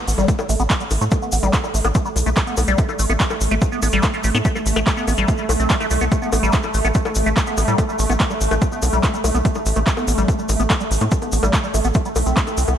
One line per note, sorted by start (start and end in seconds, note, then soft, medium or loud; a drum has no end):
0.00 12.77 A3 medium
0.08 0.15 A1 medium
0.08 0.13 B3 medium
0.08 open hi-hat medium
0.08 shaker loud
0.18 0.25 A1 medium
0.18 0.30 G3 loud
0.18 closed hi-hat medium
0.18 high bongo soft
0.18 shaker soft
0.28 0.37 A3 medium
0.28 kick loud
0.28 closed hi-hat medium
0.28 shaker medium
0.39 0.42 G3 medium
0.39 high bongo medium
0.39 shaker soft
0.49 0.57 A1 loud
0.49 0.55 A3 medium
0.49 open hi-hat loud
0.49 shaker loud
0.60 0.67 A1 medium
0.60 0.63 B3 loud
0.60 closed hi-hat medium
0.60 shaker soft
0.70 0.74 A3 medium
0.70 kick loud
0.70 clap loud
0.70 closed hi-hat medium
0.70 high bongo soft
0.70 shaker medium
0.80 0.84 G3 medium
0.80 closed hi-hat soft
0.80 shaker soft
0.90 0.98 A1 loud
0.90 open hi-hat loud
0.90 high bongo soft
0.90 shaker medium
1.01 1.09 A2 medium
1.01 1.05 A3 loud
1.01 closed hi-hat medium
1.01 shaker soft
1.11 kick loud
1.11 closed hi-hat medium
1.11 high bongo medium
1.11 shaker soft
1.22 1.31 B3 medium
1.22 shaker soft
1.32 1.40 A1 loud
1.32 1.38 B3 medium
1.32 open hi-hat loud
1.32 shaker loud
1.43 1.50 A1 medium
1.43 1.55 G3 loud
1.43 closed hi-hat medium
1.43 high bongo soft
1.43 shaker soft
1.53 1.62 A3 medium
1.53 kick loud
1.53 clap loud
1.53 closed hi-hat medium
1.53 shaker medium
1.64 1.67 G3 medium
1.64 high bongo soft
1.64 shaker soft
1.74 1.82 A1 medium
1.74 1.80 A3 medium
1.74 open hi-hat loud
1.74 shaker loud
1.84 1.92 A1 medium
1.84 1.88 B3 loud
1.84 closed hi-hat medium
1.84 high bongo medium
1.84 shaker soft
1.95 1.99 A3 medium
1.95 kick loud
1.95 closed hi-hat medium
1.95 shaker medium
2.05 2.09 G3 medium
2.05 shaker soft
2.16 2.23 B1 loud
2.16 open hi-hat loud
2.16 high bongo soft
2.16 shaker loud
2.26 2.34 B1 medium
2.26 2.30 A3 loud
2.26 closed hi-hat medium
2.26 shaker soft
2.36 kick loud
2.36 clap loud
2.36 closed hi-hat medium
2.36 high bongo soft
2.36 shaker medium
2.47 2.56 B3 medium
2.47 closed hi-hat soft
2.47 shaker soft
2.57 2.65 B1 loud
2.57 2.63 B3 medium
2.57 open hi-hat loud
2.57 high bongo medium
2.57 shaker medium
2.67 2.75 B1 medium
2.67 2.80 G3 medium
2.67 closed hi-hat medium
2.67 shaker soft
2.78 2.87 A3 medium
2.78 kick loud
2.78 closed hi-hat medium
2.78 shaker medium
2.89 2.92 G3 medium
2.89 high bongo soft
2.89 shaker soft
2.99 3.07 A1 medium
2.99 3.05 A3 medium
2.99 open hi-hat loud
2.99 shaker loud
3.10 3.17 A1 medium
3.10 3.13 B3 loud
3.10 closed hi-hat medium
3.10 high bongo soft
3.10 shaker soft
3.20 3.24 A3 medium
3.20 kick loud
3.20 clap loud
3.20 closed hi-hat medium
3.20 shaker medium
3.30 3.34 G3 medium
3.30 high bongo medium
3.30 shaker soft
3.41 3.48 A1 medium
3.41 open hi-hat medium
3.41 shaker loud
3.51 3.59 A1 medium
3.51 3.55 A3 loud
3.51 closed hi-hat soft
3.51 shaker soft
3.61 kick loud
3.61 closed hi-hat medium
3.61 high bongo soft
3.61 shaker medium
3.72 3.81 B3 medium
3.72 shaker soft
3.82 3.90 A1 loud
3.82 3.88 B3 medium
3.82 open hi-hat loud
3.82 high bongo soft
3.82 shaker medium
3.92 4.00 A1 medium
3.92 4.05 G3 loud
3.92 closed hi-hat soft
3.92 shaker soft
4.03 4.12 A3 medium
4.03 kick loud
4.03 clap loud
4.03 closed hi-hat medium
4.03 high bongo medium
4.03 shaker medium
4.14 4.17 G3 medium
4.14 closed hi-hat soft
4.14 shaker soft
4.24 4.32 A1 loud
4.24 4.30 A3 medium
4.24 open hi-hat loud
4.24 shaker loud
4.35 4.42 A2 medium
4.35 4.38 B3 medium
4.35 closed hi-hat medium
4.35 high bongo soft
4.35 shaker soft
4.45 4.49 A3 medium
4.45 kick loud
4.45 closed hi-hat medium
4.45 shaker medium
4.55 4.59 G3 medium
4.55 high bongo soft
4.55 shaker soft
4.66 4.73 A1 loud
4.66 open hi-hat loud
4.66 shaker medium
4.76 4.84 A1 medium
4.76 4.80 A3 loud
4.76 closed hi-hat medium
4.76 high bongo medium
4.76 shaker soft
4.87 kick loud
4.87 clap loud
4.87 closed hi-hat medium
4.87 shaker medium
4.97 5.06 B3 medium
4.97 shaker soft
5.07 5.15 A1 medium
5.07 5.13 B3 medium
5.07 open hi-hat medium
5.07 high bongo soft
5.07 shaker medium
5.17 5.25 A1 medium
5.17 5.30 G3 loud
5.17 closed hi-hat soft
5.17 shaker soft
5.28 5.37 A3 medium
5.28 kick loud
5.28 closed hi-hat medium
5.28 high bongo soft
5.28 shaker soft
5.38 5.42 G3 medium
5.38 shaker soft
5.49 5.57 B1 loud
5.49 5.53 A3 medium
5.49 open hi-hat loud
5.49 high bongo medium
5.49 shaker medium
5.60 5.67 B1 medium
5.60 5.68 C4 medium
5.60 closed hi-hat soft
5.60 shaker soft
5.70 5.76 G3 loud
5.70 kick loud
5.70 clap loud
5.70 closed hi-hat medium
5.70 shaker medium
5.80 5.86 A3 loud
5.80 closed hi-hat soft
5.80 high bongo soft
5.80 shaker soft
5.90 5.98 C2 loud
5.90 6.00 A3 medium
5.90 open hi-hat loud
5.90 shaker medium
6.01 6.09 C2 medium
6.01 6.05 B3 loud
6.01 closed hi-hat medium
6.01 high bongo soft
6.01 shaker soft
6.12 kick loud
6.12 closed hi-hat medium
6.12 high bongo soft
6.12 shaker medium
6.22 6.31 B3 medium
6.22 shaker soft
6.32 6.40 A1 medium
6.32 6.38 B3 medium
6.32 open hi-hat loud
6.32 high bongo medium
6.32 shaker medium
6.43 6.50 A1 medium
6.43 6.55 G3 loud
6.43 closed hi-hat medium
6.43 shaker soft
6.52 6.62 A3 medium
6.52 kick loud
6.52 clap loud
6.52 closed hi-hat medium
6.52 shaker medium
6.63 6.67 G3 medium
6.63 high bongo soft
6.63 shaker soft
6.74 6.82 A1 medium
6.74 6.80 A3 medium
6.74 open hi-hat medium
6.74 shaker medium
6.85 6.92 A1 medium
6.85 6.88 B3 loud
6.85 closed hi-hat medium
6.85 high bongo soft
6.85 shaker soft
6.94 6.99 A3 medium
6.94 kick loud
6.94 closed hi-hat medium
6.94 shaker medium
7.05 7.09 G3 medium
7.05 high bongo medium
7.05 shaker soft
7.15 7.23 A1 loud
7.15 open hi-hat loud
7.15 shaker medium
7.26 7.34 A1 medium
7.26 7.30 A3 loud
7.26 closed hi-hat soft
7.26 shaker soft
7.37 kick loud
7.37 clap loud
7.37 closed hi-hat medium
7.37 high bongo soft
7.37 shaker medium
7.47 7.56 B3 medium
7.47 closed hi-hat soft
7.47 shaker soft
7.57 7.65 A1 loud
7.57 7.63 B3 medium
7.57 open hi-hat medium
7.57 high bongo soft
7.57 shaker loud
7.68 7.75 A2 medium
7.68 7.80 G3 loud
7.68 closed hi-hat medium
7.68 shaker soft
7.78 7.87 A3 medium
7.78 kick loud
7.78 closed hi-hat medium
7.78 high bongo medium
7.78 shaker medium
7.89 7.92 G3 medium
7.89 shaker soft
7.99 8.07 A1 loud
7.99 8.05 A3 medium
7.99 open hi-hat loud
7.99 shaker medium
8.10 8.17 A1 medium
8.10 8.13 B3 loud
8.10 closed hi-hat medium
8.10 high bongo soft
8.10 shaker soft
8.20 8.24 A3 medium
8.20 kick loud
8.20 clap loud
8.20 closed hi-hat medium
8.20 shaker medium
8.30 8.34 G3 medium
8.30 high bongo soft
8.30 shaker soft
8.41 8.48 A1 medium
8.41 open hi-hat medium
8.41 shaker medium
8.51 8.59 A1 medium
8.51 8.55 A3 loud
8.51 closed hi-hat medium
8.51 high bongo medium
8.51 shaker soft
8.61 kick loud
8.61 closed hi-hat medium
8.61 shaker soft
8.72 8.81 B3 medium
8.72 shaker soft
8.82 8.90 B1 medium
8.82 8.88 B3 medium
8.82 open hi-hat loud
8.82 high bongo soft
8.82 shaker medium
8.93 9.00 B1 medium
8.93 9.05 G3 loud
8.93 closed hi-hat medium
8.93 shaker soft
9.03 9.12 A3 medium
9.03 kick loud
9.03 clap loud
9.03 closed hi-hat medium
9.03 high bongo soft
9.03 shaker medium
9.14 9.17 G3 medium
9.14 closed hi-hat soft
9.14 shaker soft
9.24 9.32 B1 loud
9.24 9.30 A3 medium
9.24 open hi-hat loud
9.24 high bongo medium
9.24 shaker medium
9.35 9.42 B1 medium
9.35 9.38 B3 loud
9.35 closed hi-hat medium
9.35 shaker soft
9.45 9.48 A3 medium
9.45 kick loud
9.45 closed hi-hat medium
9.45 shaker soft
9.55 9.59 G3 medium
9.55 high bongo soft
9.55 shaker soft
9.66 9.73 A1 medium
9.66 open hi-hat loud
9.66 shaker medium
9.76 9.84 A1 medium
9.76 9.80 A3 loud
9.76 closed hi-hat medium
9.76 high bongo soft
9.76 shaker soft
9.87 kick loud
9.87 clap loud
9.87 closed hi-hat medium
9.87 shaker medium
9.97 10.06 B3 medium
9.97 high bongo medium
9.97 shaker soft
10.07 10.15 A1 medium
10.07 10.13 B3 medium
10.07 open hi-hat medium
10.07 shaker medium
10.18 10.25 A1 medium
10.18 10.30 G3 loud
10.18 closed hi-hat medium
10.18 shaker soft
10.28 10.37 A3 medium
10.28 kick loud
10.28 closed hi-hat medium
10.28 high bongo soft
10.28 shaker soft
10.39 10.42 G3 medium
10.39 shaker soft
10.49 10.57 A1 loud
10.49 10.55 A3 medium
10.49 open hi-hat loud
10.49 high bongo soft
10.49 shaker medium
10.60 10.67 A1 medium
10.60 10.63 B3 loud
10.60 closed hi-hat medium
10.60 shaker soft
10.70 10.74 A3 medium
10.70 kick loud
10.70 clap loud
10.70 closed hi-hat medium
10.70 high bongo medium
10.70 shaker soft
10.80 10.84 G3 medium
10.80 closed hi-hat soft
10.80 shaker soft
10.91 10.98 A1 medium
10.91 open hi-hat medium
10.91 shaker medium
11.01 11.09 A2 medium
11.01 11.05 A3 loud
11.01 closed hi-hat medium
11.01 high bongo soft
11.01 shaker soft
11.11 kick loud
11.11 closed hi-hat medium
11.11 shaker medium
11.22 11.31 B3 medium
11.22 closed hi-hat soft
11.22 high bongo soft
11.22 shaker soft
11.32 11.40 A1 medium
11.32 11.38 B3 medium
11.32 open hi-hat medium
11.32 shaker medium
11.43 11.50 A1 medium
11.43 11.55 G3 loud
11.43 closed hi-hat medium
11.43 high bongo medium
11.43 shaker soft
11.53 11.62 A3 medium
11.53 kick loud
11.53 clap loud
11.53 closed hi-hat medium
11.53 shaker medium
11.64 11.67 G3 medium
11.64 shaker soft
11.74 11.82 A1 medium
11.74 11.80 A3 medium
11.74 open hi-hat medium
11.74 high bongo soft
11.74 shaker loud
11.84 11.92 A1 medium
11.84 11.88 B3 loud
11.84 closed hi-hat medium
11.84 shaker soft
11.94 11.99 A3 medium
11.94 kick loud
11.94 closed hi-hat medium
11.94 high bongo soft
11.94 swell medium
11.94 shaker medium
12.05 12.09 G3 medium
12.05 closed hi-hat soft
12.05 shaker soft
12.16 12.23 B1 loud
12.16 open hi-hat loud
12.16 high bongo medium
12.16 shaker medium
12.26 12.34 B1 medium
12.26 12.49 C4 medium
12.26 closed hi-hat medium
12.26 shaker soft
12.37 kick loud
12.37 clap loud
12.37 closed hi-hat medium
12.37 shaker soft
12.47 12.56 A3 medium
12.47 closed hi-hat soft
12.47 high bongo soft
12.47 shaker soft
12.57 12.65 C2 loud
12.57 12.63 C4 medium
12.57 open hi-hat loud
12.57 shaker medium
12.68 12.75 C2 medium
12.68 12.74 B3 medium
12.68 closed hi-hat medium
12.68 high bongo soft
12.68 shaker soft